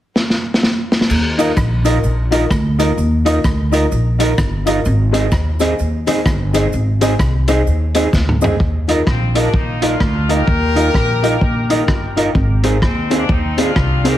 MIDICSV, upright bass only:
0, 0, Header, 1, 2, 480
1, 0, Start_track
1, 0, Key_signature, -3, "major"
1, 0, Tempo, 469116
1, 1122, Time_signature, 4, 2, 24, 8
1, 14506, End_track
2, 0, Start_track
2, 0, Title_t, "Upright bass"
2, 0, Program_c, 0, 32
2, 1126, Note_on_c, 0, 39, 105
2, 1533, Note_off_c, 0, 39, 0
2, 1608, Note_on_c, 0, 34, 105
2, 2014, Note_off_c, 0, 34, 0
2, 2086, Note_on_c, 0, 34, 85
2, 2493, Note_off_c, 0, 34, 0
2, 2568, Note_on_c, 0, 38, 98
2, 2974, Note_off_c, 0, 38, 0
2, 3044, Note_on_c, 0, 39, 93
2, 3451, Note_off_c, 0, 39, 0
2, 3527, Note_on_c, 0, 38, 94
2, 3933, Note_off_c, 0, 38, 0
2, 4009, Note_on_c, 0, 34, 95
2, 4414, Note_off_c, 0, 34, 0
2, 4487, Note_on_c, 0, 31, 89
2, 4893, Note_off_c, 0, 31, 0
2, 4969, Note_on_c, 0, 32, 108
2, 5374, Note_off_c, 0, 32, 0
2, 5447, Note_on_c, 0, 39, 83
2, 5853, Note_off_c, 0, 39, 0
2, 5930, Note_on_c, 0, 39, 87
2, 6334, Note_off_c, 0, 39, 0
2, 6404, Note_on_c, 0, 31, 101
2, 6810, Note_off_c, 0, 31, 0
2, 6891, Note_on_c, 0, 32, 99
2, 7295, Note_off_c, 0, 32, 0
2, 7363, Note_on_c, 0, 36, 101
2, 7770, Note_off_c, 0, 36, 0
2, 7845, Note_on_c, 0, 39, 83
2, 8251, Note_off_c, 0, 39, 0
2, 8325, Note_on_c, 0, 38, 87
2, 8731, Note_off_c, 0, 38, 0
2, 8805, Note_on_c, 0, 39, 99
2, 9211, Note_off_c, 0, 39, 0
2, 9282, Note_on_c, 0, 34, 104
2, 9689, Note_off_c, 0, 34, 0
2, 9763, Note_on_c, 0, 34, 78
2, 10170, Note_off_c, 0, 34, 0
2, 10240, Note_on_c, 0, 38, 96
2, 10648, Note_off_c, 0, 38, 0
2, 10724, Note_on_c, 0, 39, 97
2, 11130, Note_off_c, 0, 39, 0
2, 11200, Note_on_c, 0, 34, 93
2, 11608, Note_off_c, 0, 34, 0
2, 11684, Note_on_c, 0, 34, 81
2, 12158, Note_off_c, 0, 34, 0
2, 12158, Note_on_c, 0, 31, 83
2, 12566, Note_off_c, 0, 31, 0
2, 12639, Note_on_c, 0, 32, 108
2, 13122, Note_on_c, 0, 39, 95
2, 13137, Note_off_c, 0, 32, 0
2, 13528, Note_off_c, 0, 39, 0
2, 13602, Note_on_c, 0, 39, 94
2, 14008, Note_off_c, 0, 39, 0
2, 14082, Note_on_c, 0, 36, 88
2, 14488, Note_off_c, 0, 36, 0
2, 14506, End_track
0, 0, End_of_file